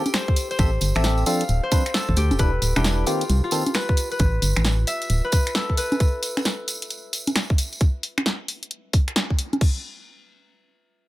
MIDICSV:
0, 0, Header, 1, 5, 480
1, 0, Start_track
1, 0, Tempo, 451128
1, 627, Time_signature, 4, 2, 24, 8
1, 11792, End_track
2, 0, Start_track
2, 0, Title_t, "Harp"
2, 0, Program_c, 0, 46
2, 0, Note_on_c, 0, 67, 91
2, 0, Note_on_c, 0, 69, 96
2, 0, Note_on_c, 0, 71, 90
2, 0, Note_on_c, 0, 73, 101
2, 146, Note_on_c, 0, 72, 99
2, 210, Note_off_c, 0, 71, 0
2, 210, Note_off_c, 0, 73, 0
2, 535, Note_off_c, 0, 72, 0
2, 539, Note_on_c, 0, 72, 92
2, 1346, Note_on_c, 0, 77, 95
2, 1438, Note_off_c, 0, 69, 0
2, 1734, Note_off_c, 0, 72, 0
2, 1738, Note_on_c, 0, 72, 90
2, 2064, Note_on_c, 0, 69, 88
2, 2302, Note_off_c, 0, 67, 0
2, 2306, Note_on_c, 0, 67, 95
2, 2543, Note_on_c, 0, 71, 99
2, 2607, Note_off_c, 0, 72, 0
2, 2932, Note_off_c, 0, 67, 0
2, 2937, Note_on_c, 0, 67, 91
2, 3117, Note_off_c, 0, 77, 0
2, 3265, Note_on_c, 0, 65, 89
2, 3654, Note_off_c, 0, 65, 0
2, 3659, Note_on_c, 0, 65, 95
2, 3982, Note_off_c, 0, 71, 0
2, 3987, Note_on_c, 0, 71, 96
2, 4373, Note_off_c, 0, 71, 0
2, 4378, Note_on_c, 0, 71, 95
2, 4401, Note_off_c, 0, 69, 0
2, 5186, Note_on_c, 0, 76, 98
2, 5249, Note_off_c, 0, 65, 0
2, 5441, Note_off_c, 0, 67, 0
2, 5577, Note_off_c, 0, 71, 0
2, 5581, Note_on_c, 0, 71, 92
2, 5907, Note_on_c, 0, 69, 90
2, 6143, Note_off_c, 0, 71, 0
2, 6147, Note_on_c, 0, 71, 92
2, 7019, Note_off_c, 0, 76, 0
2, 8244, Note_off_c, 0, 69, 0
2, 8327, Note_off_c, 0, 71, 0
2, 11792, End_track
3, 0, Start_track
3, 0, Title_t, "Synth stab"
3, 0, Program_c, 1, 62
3, 626, Note_on_c, 1, 60, 72
3, 626, Note_on_c, 1, 67, 66
3, 626, Note_on_c, 1, 69, 67
3, 626, Note_on_c, 1, 76, 83
3, 748, Note_off_c, 1, 67, 0
3, 748, Note_off_c, 1, 69, 0
3, 748, Note_off_c, 1, 76, 0
3, 749, Note_off_c, 1, 60, 0
3, 1018, Note_on_c, 1, 60, 82
3, 1018, Note_on_c, 1, 69, 80
3, 1019, Note_on_c, 1, 67, 75
3, 1019, Note_on_c, 1, 76, 93
3, 1325, Note_off_c, 1, 60, 0
3, 1325, Note_off_c, 1, 67, 0
3, 1325, Note_off_c, 1, 69, 0
3, 1325, Note_off_c, 1, 76, 0
3, 1346, Note_on_c, 1, 53, 97
3, 1346, Note_on_c, 1, 60, 89
3, 1346, Note_on_c, 1, 62, 89
3, 1346, Note_on_c, 1, 69, 105
3, 1523, Note_off_c, 1, 53, 0
3, 1523, Note_off_c, 1, 60, 0
3, 1523, Note_off_c, 1, 69, 0
3, 1524, Note_off_c, 1, 62, 0
3, 1825, Note_on_c, 1, 62, 76
3, 1825, Note_on_c, 1, 71, 89
3, 1826, Note_on_c, 1, 53, 82
3, 1826, Note_on_c, 1, 60, 76
3, 1948, Note_off_c, 1, 53, 0
3, 1948, Note_off_c, 1, 60, 0
3, 1948, Note_off_c, 1, 62, 0
3, 1948, Note_off_c, 1, 71, 0
3, 2547, Note_on_c, 1, 55, 74
3, 2547, Note_on_c, 1, 62, 70
3, 2547, Note_on_c, 1, 64, 71
3, 2547, Note_on_c, 1, 71, 82
3, 2669, Note_off_c, 1, 55, 0
3, 2669, Note_off_c, 1, 62, 0
3, 2669, Note_off_c, 1, 64, 0
3, 2669, Note_off_c, 1, 71, 0
3, 2939, Note_on_c, 1, 55, 83
3, 2939, Note_on_c, 1, 62, 77
3, 2939, Note_on_c, 1, 64, 74
3, 2939, Note_on_c, 1, 71, 91
3, 3245, Note_off_c, 1, 55, 0
3, 3245, Note_off_c, 1, 62, 0
3, 3245, Note_off_c, 1, 64, 0
3, 3246, Note_off_c, 1, 71, 0
3, 3264, Note_on_c, 1, 58, 88
3, 3264, Note_on_c, 1, 67, 104
3, 3265, Note_on_c, 1, 51, 96
3, 3265, Note_on_c, 1, 60, 89
3, 3442, Note_off_c, 1, 58, 0
3, 3443, Note_off_c, 1, 51, 0
3, 3443, Note_off_c, 1, 60, 0
3, 3443, Note_off_c, 1, 67, 0
3, 3745, Note_on_c, 1, 51, 84
3, 3745, Note_on_c, 1, 58, 73
3, 3745, Note_on_c, 1, 60, 74
3, 3745, Note_on_c, 1, 69, 90
3, 3868, Note_off_c, 1, 51, 0
3, 3868, Note_off_c, 1, 58, 0
3, 3868, Note_off_c, 1, 60, 0
3, 3868, Note_off_c, 1, 69, 0
3, 11792, End_track
4, 0, Start_track
4, 0, Title_t, "FM bass"
4, 0, Program_c, 2, 39
4, 627, Note_on_c, 2, 33, 103
4, 836, Note_off_c, 2, 33, 0
4, 867, Note_on_c, 2, 31, 83
4, 992, Note_off_c, 2, 31, 0
4, 1020, Note_on_c, 2, 33, 93
4, 1321, Note_off_c, 2, 33, 0
4, 1586, Note_on_c, 2, 26, 85
4, 1712, Note_off_c, 2, 26, 0
4, 2220, Note_on_c, 2, 33, 97
4, 2291, Note_off_c, 2, 33, 0
4, 2307, Note_on_c, 2, 38, 105
4, 2461, Note_on_c, 2, 29, 75
4, 2477, Note_off_c, 2, 38, 0
4, 2531, Note_off_c, 2, 29, 0
4, 2547, Note_on_c, 2, 28, 101
4, 2755, Note_off_c, 2, 28, 0
4, 2788, Note_on_c, 2, 26, 83
4, 2913, Note_off_c, 2, 26, 0
4, 2943, Note_on_c, 2, 28, 87
4, 3243, Note_off_c, 2, 28, 0
4, 3507, Note_on_c, 2, 36, 86
4, 3632, Note_off_c, 2, 36, 0
4, 4466, Note_on_c, 2, 33, 100
4, 4675, Note_off_c, 2, 33, 0
4, 4705, Note_on_c, 2, 31, 85
4, 4832, Note_off_c, 2, 31, 0
4, 4861, Note_on_c, 2, 33, 86
4, 5162, Note_off_c, 2, 33, 0
4, 5426, Note_on_c, 2, 26, 86
4, 5552, Note_off_c, 2, 26, 0
4, 11792, End_track
5, 0, Start_track
5, 0, Title_t, "Drums"
5, 61, Note_on_c, 9, 42, 60
5, 61, Note_on_c, 9, 63, 60
5, 64, Note_on_c, 9, 54, 46
5, 146, Note_off_c, 9, 54, 0
5, 146, Note_on_c, 9, 54, 62
5, 147, Note_off_c, 9, 42, 0
5, 147, Note_on_c, 9, 26, 72
5, 147, Note_on_c, 9, 38, 127
5, 147, Note_on_c, 9, 42, 63
5, 167, Note_off_c, 9, 63, 0
5, 252, Note_off_c, 9, 54, 0
5, 253, Note_off_c, 9, 26, 0
5, 253, Note_off_c, 9, 38, 0
5, 253, Note_off_c, 9, 42, 0
5, 300, Note_on_c, 9, 36, 110
5, 388, Note_on_c, 9, 46, 101
5, 388, Note_on_c, 9, 54, 103
5, 406, Note_off_c, 9, 36, 0
5, 494, Note_off_c, 9, 46, 0
5, 494, Note_off_c, 9, 54, 0
5, 539, Note_on_c, 9, 54, 40
5, 541, Note_on_c, 9, 42, 36
5, 624, Note_off_c, 9, 54, 0
5, 624, Note_on_c, 9, 54, 57
5, 627, Note_off_c, 9, 42, 0
5, 627, Note_on_c, 9, 36, 127
5, 627, Note_on_c, 9, 42, 65
5, 730, Note_off_c, 9, 54, 0
5, 733, Note_off_c, 9, 36, 0
5, 733, Note_off_c, 9, 42, 0
5, 860, Note_on_c, 9, 54, 91
5, 867, Note_on_c, 9, 46, 107
5, 967, Note_off_c, 9, 54, 0
5, 974, Note_off_c, 9, 46, 0
5, 1013, Note_on_c, 9, 54, 41
5, 1020, Note_on_c, 9, 26, 71
5, 1020, Note_on_c, 9, 42, 36
5, 1106, Note_off_c, 9, 42, 0
5, 1106, Note_on_c, 9, 38, 123
5, 1106, Note_on_c, 9, 42, 66
5, 1110, Note_off_c, 9, 54, 0
5, 1110, Note_on_c, 9, 54, 57
5, 1126, Note_off_c, 9, 26, 0
5, 1213, Note_off_c, 9, 38, 0
5, 1213, Note_off_c, 9, 42, 0
5, 1216, Note_off_c, 9, 54, 0
5, 1251, Note_on_c, 9, 54, 39
5, 1342, Note_off_c, 9, 54, 0
5, 1342, Note_on_c, 9, 54, 86
5, 1345, Note_on_c, 9, 46, 97
5, 1448, Note_off_c, 9, 54, 0
5, 1452, Note_off_c, 9, 46, 0
5, 1498, Note_on_c, 9, 42, 69
5, 1498, Note_on_c, 9, 54, 36
5, 1583, Note_off_c, 9, 54, 0
5, 1583, Note_on_c, 9, 54, 49
5, 1585, Note_off_c, 9, 42, 0
5, 1585, Note_on_c, 9, 42, 63
5, 1689, Note_off_c, 9, 54, 0
5, 1691, Note_off_c, 9, 42, 0
5, 1825, Note_on_c, 9, 54, 100
5, 1826, Note_on_c, 9, 46, 104
5, 1827, Note_on_c, 9, 36, 115
5, 1931, Note_off_c, 9, 54, 0
5, 1932, Note_off_c, 9, 46, 0
5, 1933, Note_off_c, 9, 36, 0
5, 1980, Note_on_c, 9, 26, 30
5, 1980, Note_on_c, 9, 42, 65
5, 1981, Note_on_c, 9, 54, 44
5, 2067, Note_off_c, 9, 42, 0
5, 2067, Note_on_c, 9, 38, 123
5, 2067, Note_on_c, 9, 42, 67
5, 2074, Note_off_c, 9, 54, 0
5, 2074, Note_on_c, 9, 54, 59
5, 2086, Note_off_c, 9, 26, 0
5, 2173, Note_off_c, 9, 38, 0
5, 2173, Note_off_c, 9, 42, 0
5, 2181, Note_off_c, 9, 54, 0
5, 2220, Note_on_c, 9, 36, 66
5, 2303, Note_on_c, 9, 54, 84
5, 2307, Note_on_c, 9, 46, 102
5, 2326, Note_off_c, 9, 36, 0
5, 2409, Note_off_c, 9, 54, 0
5, 2413, Note_off_c, 9, 46, 0
5, 2457, Note_on_c, 9, 54, 44
5, 2459, Note_on_c, 9, 42, 36
5, 2459, Note_on_c, 9, 63, 82
5, 2541, Note_off_c, 9, 54, 0
5, 2541, Note_on_c, 9, 54, 52
5, 2547, Note_off_c, 9, 42, 0
5, 2547, Note_on_c, 9, 36, 120
5, 2547, Note_on_c, 9, 42, 68
5, 2565, Note_off_c, 9, 63, 0
5, 2647, Note_off_c, 9, 54, 0
5, 2653, Note_off_c, 9, 36, 0
5, 2653, Note_off_c, 9, 42, 0
5, 2787, Note_on_c, 9, 46, 102
5, 2788, Note_on_c, 9, 54, 88
5, 2893, Note_off_c, 9, 46, 0
5, 2895, Note_off_c, 9, 54, 0
5, 2940, Note_on_c, 9, 26, 70
5, 2940, Note_on_c, 9, 42, 42
5, 2940, Note_on_c, 9, 63, 70
5, 2941, Note_on_c, 9, 54, 43
5, 3026, Note_off_c, 9, 42, 0
5, 3026, Note_on_c, 9, 38, 119
5, 3026, Note_on_c, 9, 42, 67
5, 3027, Note_off_c, 9, 54, 0
5, 3027, Note_on_c, 9, 54, 55
5, 3046, Note_off_c, 9, 26, 0
5, 3046, Note_off_c, 9, 63, 0
5, 3132, Note_off_c, 9, 38, 0
5, 3132, Note_off_c, 9, 42, 0
5, 3133, Note_off_c, 9, 54, 0
5, 3261, Note_on_c, 9, 54, 82
5, 3265, Note_on_c, 9, 46, 99
5, 3367, Note_off_c, 9, 54, 0
5, 3371, Note_off_c, 9, 46, 0
5, 3416, Note_on_c, 9, 54, 36
5, 3418, Note_on_c, 9, 42, 69
5, 3506, Note_off_c, 9, 42, 0
5, 3506, Note_off_c, 9, 54, 0
5, 3506, Note_on_c, 9, 42, 65
5, 3506, Note_on_c, 9, 54, 51
5, 3612, Note_off_c, 9, 42, 0
5, 3612, Note_off_c, 9, 54, 0
5, 3735, Note_on_c, 9, 54, 92
5, 3745, Note_on_c, 9, 46, 103
5, 3841, Note_off_c, 9, 54, 0
5, 3852, Note_off_c, 9, 46, 0
5, 3899, Note_on_c, 9, 42, 66
5, 3899, Note_on_c, 9, 54, 41
5, 3899, Note_on_c, 9, 63, 65
5, 3980, Note_off_c, 9, 54, 0
5, 3980, Note_on_c, 9, 54, 51
5, 3986, Note_off_c, 9, 42, 0
5, 3986, Note_on_c, 9, 26, 67
5, 3986, Note_on_c, 9, 38, 120
5, 3986, Note_on_c, 9, 42, 67
5, 4006, Note_off_c, 9, 63, 0
5, 4086, Note_off_c, 9, 54, 0
5, 4093, Note_off_c, 9, 26, 0
5, 4093, Note_off_c, 9, 38, 0
5, 4093, Note_off_c, 9, 42, 0
5, 4139, Note_on_c, 9, 36, 107
5, 4226, Note_on_c, 9, 46, 106
5, 4228, Note_on_c, 9, 54, 87
5, 4246, Note_off_c, 9, 36, 0
5, 4332, Note_off_c, 9, 46, 0
5, 4335, Note_off_c, 9, 54, 0
5, 4379, Note_on_c, 9, 42, 39
5, 4383, Note_on_c, 9, 54, 38
5, 4458, Note_off_c, 9, 54, 0
5, 4458, Note_on_c, 9, 54, 50
5, 4465, Note_off_c, 9, 42, 0
5, 4465, Note_on_c, 9, 42, 74
5, 4466, Note_on_c, 9, 36, 119
5, 4565, Note_off_c, 9, 54, 0
5, 4571, Note_off_c, 9, 42, 0
5, 4573, Note_off_c, 9, 36, 0
5, 4704, Note_on_c, 9, 46, 110
5, 4708, Note_on_c, 9, 54, 87
5, 4811, Note_off_c, 9, 46, 0
5, 4815, Note_off_c, 9, 54, 0
5, 4857, Note_on_c, 9, 26, 71
5, 4857, Note_on_c, 9, 42, 42
5, 4857, Note_on_c, 9, 54, 41
5, 4943, Note_off_c, 9, 42, 0
5, 4943, Note_on_c, 9, 38, 119
5, 4943, Note_on_c, 9, 42, 71
5, 4945, Note_off_c, 9, 54, 0
5, 4945, Note_on_c, 9, 54, 52
5, 4963, Note_off_c, 9, 26, 0
5, 5049, Note_off_c, 9, 38, 0
5, 5049, Note_off_c, 9, 42, 0
5, 5051, Note_off_c, 9, 54, 0
5, 5184, Note_on_c, 9, 46, 108
5, 5190, Note_on_c, 9, 54, 80
5, 5290, Note_off_c, 9, 46, 0
5, 5296, Note_off_c, 9, 54, 0
5, 5338, Note_on_c, 9, 42, 71
5, 5345, Note_on_c, 9, 54, 34
5, 5423, Note_off_c, 9, 42, 0
5, 5423, Note_on_c, 9, 42, 69
5, 5425, Note_off_c, 9, 54, 0
5, 5425, Note_on_c, 9, 54, 47
5, 5530, Note_off_c, 9, 42, 0
5, 5531, Note_off_c, 9, 54, 0
5, 5660, Note_on_c, 9, 54, 91
5, 5664, Note_on_c, 9, 46, 115
5, 5666, Note_on_c, 9, 36, 108
5, 5767, Note_off_c, 9, 54, 0
5, 5771, Note_off_c, 9, 46, 0
5, 5773, Note_off_c, 9, 36, 0
5, 5819, Note_on_c, 9, 26, 30
5, 5819, Note_on_c, 9, 42, 70
5, 5830, Note_on_c, 9, 54, 36
5, 5904, Note_off_c, 9, 42, 0
5, 5904, Note_on_c, 9, 38, 124
5, 5904, Note_on_c, 9, 42, 71
5, 5906, Note_off_c, 9, 54, 0
5, 5906, Note_on_c, 9, 54, 53
5, 5925, Note_off_c, 9, 26, 0
5, 6011, Note_off_c, 9, 38, 0
5, 6011, Note_off_c, 9, 42, 0
5, 6012, Note_off_c, 9, 54, 0
5, 6060, Note_on_c, 9, 36, 61
5, 6144, Note_on_c, 9, 46, 111
5, 6148, Note_on_c, 9, 54, 81
5, 6166, Note_off_c, 9, 36, 0
5, 6250, Note_off_c, 9, 46, 0
5, 6255, Note_off_c, 9, 54, 0
5, 6298, Note_on_c, 9, 42, 41
5, 6298, Note_on_c, 9, 54, 39
5, 6298, Note_on_c, 9, 63, 86
5, 6386, Note_off_c, 9, 42, 0
5, 6386, Note_on_c, 9, 42, 75
5, 6387, Note_off_c, 9, 54, 0
5, 6387, Note_on_c, 9, 36, 120
5, 6387, Note_on_c, 9, 54, 46
5, 6404, Note_off_c, 9, 63, 0
5, 6492, Note_off_c, 9, 42, 0
5, 6493, Note_off_c, 9, 36, 0
5, 6494, Note_off_c, 9, 54, 0
5, 6625, Note_on_c, 9, 46, 112
5, 6628, Note_on_c, 9, 54, 83
5, 6731, Note_off_c, 9, 46, 0
5, 6734, Note_off_c, 9, 54, 0
5, 6779, Note_on_c, 9, 26, 72
5, 6779, Note_on_c, 9, 42, 40
5, 6779, Note_on_c, 9, 63, 66
5, 6789, Note_on_c, 9, 54, 37
5, 6866, Note_off_c, 9, 42, 0
5, 6866, Note_on_c, 9, 38, 114
5, 6866, Note_on_c, 9, 42, 74
5, 6867, Note_off_c, 9, 54, 0
5, 6867, Note_on_c, 9, 54, 53
5, 6885, Note_off_c, 9, 26, 0
5, 6885, Note_off_c, 9, 63, 0
5, 6972, Note_off_c, 9, 38, 0
5, 6972, Note_off_c, 9, 42, 0
5, 6974, Note_off_c, 9, 54, 0
5, 7106, Note_on_c, 9, 46, 111
5, 7108, Note_on_c, 9, 54, 90
5, 7212, Note_off_c, 9, 46, 0
5, 7215, Note_off_c, 9, 54, 0
5, 7259, Note_on_c, 9, 42, 71
5, 7264, Note_on_c, 9, 54, 32
5, 7346, Note_off_c, 9, 42, 0
5, 7346, Note_off_c, 9, 54, 0
5, 7346, Note_on_c, 9, 42, 68
5, 7346, Note_on_c, 9, 54, 49
5, 7452, Note_off_c, 9, 54, 0
5, 7453, Note_off_c, 9, 42, 0
5, 7586, Note_on_c, 9, 46, 113
5, 7588, Note_on_c, 9, 54, 96
5, 7693, Note_off_c, 9, 46, 0
5, 7695, Note_off_c, 9, 54, 0
5, 7737, Note_on_c, 9, 54, 34
5, 7739, Note_on_c, 9, 42, 71
5, 7739, Note_on_c, 9, 63, 65
5, 7826, Note_off_c, 9, 42, 0
5, 7826, Note_on_c, 9, 26, 67
5, 7826, Note_on_c, 9, 38, 113
5, 7826, Note_on_c, 9, 42, 71
5, 7827, Note_off_c, 9, 54, 0
5, 7827, Note_on_c, 9, 54, 49
5, 7846, Note_off_c, 9, 63, 0
5, 7933, Note_off_c, 9, 26, 0
5, 7933, Note_off_c, 9, 38, 0
5, 7933, Note_off_c, 9, 42, 0
5, 7933, Note_off_c, 9, 54, 0
5, 7981, Note_on_c, 9, 36, 104
5, 8068, Note_on_c, 9, 46, 117
5, 8071, Note_on_c, 9, 54, 87
5, 8087, Note_off_c, 9, 36, 0
5, 8174, Note_off_c, 9, 46, 0
5, 8178, Note_off_c, 9, 54, 0
5, 8221, Note_on_c, 9, 42, 41
5, 8223, Note_on_c, 9, 54, 41
5, 8307, Note_off_c, 9, 42, 0
5, 8307, Note_on_c, 9, 42, 70
5, 8308, Note_on_c, 9, 36, 118
5, 8330, Note_off_c, 9, 54, 0
5, 8414, Note_off_c, 9, 36, 0
5, 8414, Note_off_c, 9, 42, 0
5, 8547, Note_on_c, 9, 46, 116
5, 8653, Note_off_c, 9, 46, 0
5, 8701, Note_on_c, 9, 26, 74
5, 8701, Note_on_c, 9, 42, 40
5, 8701, Note_on_c, 9, 63, 63
5, 8788, Note_off_c, 9, 42, 0
5, 8788, Note_on_c, 9, 38, 116
5, 8788, Note_on_c, 9, 42, 72
5, 8807, Note_off_c, 9, 26, 0
5, 8807, Note_off_c, 9, 63, 0
5, 8894, Note_off_c, 9, 38, 0
5, 8894, Note_off_c, 9, 42, 0
5, 9027, Note_on_c, 9, 46, 108
5, 9133, Note_off_c, 9, 46, 0
5, 9180, Note_on_c, 9, 42, 69
5, 9266, Note_off_c, 9, 42, 0
5, 9266, Note_on_c, 9, 42, 68
5, 9372, Note_off_c, 9, 42, 0
5, 9506, Note_on_c, 9, 46, 118
5, 9507, Note_on_c, 9, 36, 106
5, 9612, Note_off_c, 9, 46, 0
5, 9613, Note_off_c, 9, 36, 0
5, 9659, Note_on_c, 9, 26, 31
5, 9659, Note_on_c, 9, 42, 69
5, 9746, Note_off_c, 9, 42, 0
5, 9746, Note_on_c, 9, 38, 115
5, 9746, Note_on_c, 9, 42, 70
5, 9766, Note_off_c, 9, 26, 0
5, 9852, Note_off_c, 9, 38, 0
5, 9852, Note_off_c, 9, 42, 0
5, 9900, Note_on_c, 9, 36, 59
5, 9986, Note_on_c, 9, 46, 112
5, 10006, Note_off_c, 9, 36, 0
5, 10093, Note_off_c, 9, 46, 0
5, 10141, Note_on_c, 9, 42, 39
5, 10141, Note_on_c, 9, 63, 79
5, 10227, Note_on_c, 9, 36, 120
5, 10227, Note_on_c, 9, 49, 92
5, 10247, Note_off_c, 9, 42, 0
5, 10247, Note_off_c, 9, 63, 0
5, 10333, Note_off_c, 9, 36, 0
5, 10333, Note_off_c, 9, 49, 0
5, 11792, End_track
0, 0, End_of_file